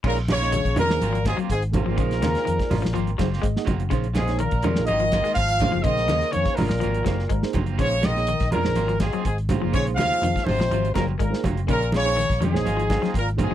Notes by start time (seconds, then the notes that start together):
0.04 A#1 A#2 G#3 A#3 C#4 D#4 F4 G#4 A#4 C#5, muted clean electric guitar stroke, kick, crash
0.17 closed hi-hat
0.28 C#3 G#3 C#4 F4 C#5, snare, closed hi-hat, high conga, low conga
0.41 A#3 D#4 G#4 D#5, snare, closed hi-hat
0.52 D#3, closed hi-hat, low conga
0.65 A#1, kick, closed hi-hat
0.76 F2 A#2 D#3 G#3 C#4 F4 G#4 A#4 C#5, closed hi-hat, high conga, low conga
0.88 D#2 A#3 D#4 G#4 C5, snare
1.01 G#1 F#3 A#3 C4 F4, closed hi-hat, high conga
1.13 F3, closed hi-hat
1.25 G#2 F#3 A#3 C4 F4 G#4, kick, snare, closed hi-hat, high conga
1.37 F#3 A#3 C4 F4, muted fingered electric bass stroke, closed hi-hat
1.50 G#1 G#2 G#4, kick, closed hi-hat
1.62 closed hi-hat
1.71 A#2 A#3 D#4 G#4 C5, kick, closed hi-hat, high conga, low conga
1.75 F#3 A#3 C4 F4 A#4
1.86 G#1 F3 A#3 C4 F4
1.98 A#1 C#3 F3 G#3 A#3 C#4 D#4 F4 G#4 C5, kick, closed hi-hat
2.11 snare, closed hi-hat
2.22 D#2 C#3 F3 G#3 C#4 F4, snare, closed hi-hat, high conga, low conga
2.35 snare, closed hi-hat
2.45 F2 D#3, closed hi-hat
2.59 muted fingered electric bass stroke, kick, snare, closed hi-hat
2.70 G#1 F3 G#3 C#4 F4, open hi-hat, high conga, low conga
2.82 A#1 F3, snare
2.94 G#1 F3 A#3 C4 F4, muted clean electric guitar stroke, closed hi-hat
3.07 closed hi-hat
3.18 F#1 F#3 A#3 C4 D#4 F4 G#4 C5, kick, snare, closed hi-hat, high conga
3.30 A#3 C4 F4, snare
3.42 G#1 G#3 G#4 C5 D#5, kick, closed hi-hat
3.57 A#3 D#4 G#4 D#5 F#5, snare
3.65 F#1 F#3 A#3 C4 F4, kick, closed hi-hat, high conga, low conga
3.80 closed hi-hat
3.90 A#1 C#3 F3 G#3 A#3 C#4 D#4 F4 G#4 C5, kick, closed hi-hat
4.04 closed hi-hat
4.14 G#2 F3 G#3 C#4 F4 G#4, snare, closed hi-hat, high conga, low conga
4.27 A#3 D#4 G#4 C#5, snare, closed hi-hat
4.39 A#2 D#3 A#4, closed hi-hat
4.51 A#1, kick, closed hi-hat
4.62 F2 D#3 F3 G#3 C#4 F4 G#4 C5, closed hi-hat, high conga, low conga
4.76 A#1 A#3 D#4 G#4 A#4, snare
4.86 G#1 D#3 F#3 A#3 C4 F4 D#5, closed hi-hat, high conga
4.99 F3, closed hi-hat
5.12 F#3 A#3 C4 F4, kick, snare, closed hi-hat, high conga
5.24 G#3 A#3 C4 F4, muted fingered electric bass stroke, snare, closed hi-hat
5.34 G#1 F3 F5, kick, closed hi-hat
5.48 closed hi-hat
5.60 F#3 A#3 C4 D#4 F4 G#4 C5, kick, closed hi-hat, high conga, low conga
5.72 F#1 F3
5.83 A#1 C#3 D#3 F3 G#3 A#3 D#4 F4 G#4 C5 D#5, muted clean electric guitar stroke, kick, closed hi-hat
5.97 snare, closed hi-hat
6.08 D#2 C#3 F3 G#3 C#4 F4, snare, closed hi-hat, high conga
6.21 snare, closed hi-hat
6.32 F2 C#3 D#3 C#5, closed hi-hat
6.45 muted fingered electric bass stroke, kick, snare, closed hi-hat
6.56 G#1 A#2 F3 G#3 C#4 F4 A#4, open hi-hat, high conga, low conga
6.69 A#1, muted clean electric guitar stroke, snare
6.80 G#1 F3 F#3 A#3 C4 F4, closed hi-hat, high conga
6.94 closed hi-hat
7.05 F#1 F#3 A#3 C4 D#4 F4 G#4 C5, kick, snare, closed hi-hat, high conga
7.19 snare
7.29 G#1 G#3 G#4 C5, kick, closed hi-hat
7.42 A#3 D#4 G#4 C5, snare
7.53 F#1 F#3 A#3 C4 F4, kick, closed hi-hat, high conga, low conga
7.65 A#3 C4 F4, closed hi-hat
7.78 A#1 C#3 F3 G#3 A#3 C#4 D#4 F4 G#4 C5 C#5, kick, closed hi-hat
7.91 closed hi-hat
8.02 D#3 F3 G#3 C#4 F4 D#5, snare, closed hi-hat, high conga, low conga
8.16 A#3 D#4 G#4 C#5, snare, closed hi-hat
8.27 D#3, closed hi-hat
8.40 A#1, kick, snare, closed hi-hat
8.51 F2 A#2 F3 G#3 C#4 F4 G#4 A#4 C#5, closed hi-hat, high conga, low conga
8.64 A#1 A#3 D#4 G#4 C5, snare
8.76 G#1 F#3 A#3 C4 F4, closed hi-hat, high conga
8.88 F3, closed hi-hat
9.00 G#2 F#3 A#3 C4 F4 G#4, kick, snare, closed hi-hat, high conga
9.13 F#3 A#3 C4 F4, muted fingered electric bass stroke, closed hi-hat
9.24 G#1 G#2 G#4, kick, closed hi-hat
9.38 closed hi-hat
9.49 F#3 A#3 C4 D#4 F4 G#4 C5, kick, closed hi-hat, high conga, low conga
9.62 F#1 F3 A#3 F4
9.71 A#1 C#3 G#3 A#3 C#4 D#4 F4 G#4 C5 C#5, kick, closed hi-hat
9.87 closed hi-hat
9.96 D#2 C#3 F3 F5, snare, closed hi-hat, high conga, low conga
10.00 G#3 C#4 F4
10.12 closed hi-hat
10.22 F2 D#3, closed hi-hat, low conga
10.36 muted fingered electric bass stroke, kick, snare, closed hi-hat
10.44 G#1 C3 G#3 C5, high conga, low conga
10.49 F4, open hi-hat
10.59 A#1 F3, snare
10.71 G#1 F3 F#3 C4 F4, muted clean electric guitar stroke, closed hi-hat, high conga
10.85 closed hi-hat
10.93 F#1 A#2 F#3 A#3 D#4 F4 G#4 A#4 C5, kick, snare, closed hi-hat, high conga
10.97 C4
11.08 high conga
11.18 G#1 A#2 G#3 G#4 A#4, kick, closed hi-hat
11.30 A#3 D#4 G#4 C5, snare
11.44 F#1 F#3 A#3 C4 F4, kick, closed hi-hat, high conga, low conga
11.57 closed hi-hat
11.67 A#1 A#2 C#3 G#3 A#3 C#4 D#4 F4 G#4 A#4 C#5, kick, closed hi-hat
11.82 closed hi-hat
11.92 C#3 G#3 C#4 F4, snare, closed hi-hat, high conga
11.97 C#5
12.04 A#3 D#4 G#4 C5, snare, closed hi-hat
12.17 D#3, snare, closed hi-hat
12.30 A#1, kick, snare, closed hi-hat
12.41 F2 G#2 D#3 G#3 C#4 F4 G#4 C#5, closed hi-hat, high conga, low conga
12.52 A#1 A#3 D#4 G#4 C#5, snare
12.66 G#1 F#3 A#3 F4, muted clean electric guitar stroke, closed hi-hat, high conga
12.77 F3, closed hi-hat
12.89 F#3 A#3 C4 F4, kick, snare, closed hi-hat, high conga
13.02 F#3 A#3 C4 F4, muted fingered electric bass stroke, snare, closed hi-hat, high conga
13.14 G#1 A#2 A#4, kick, closed hi-hat
13.29 closed hi-hat
13.37 F#3 A#3 C4 D#4 F4 G#4 C5, kick, closed hi-hat, high conga, low conga
13.42 G#2 G#4
13.51 F3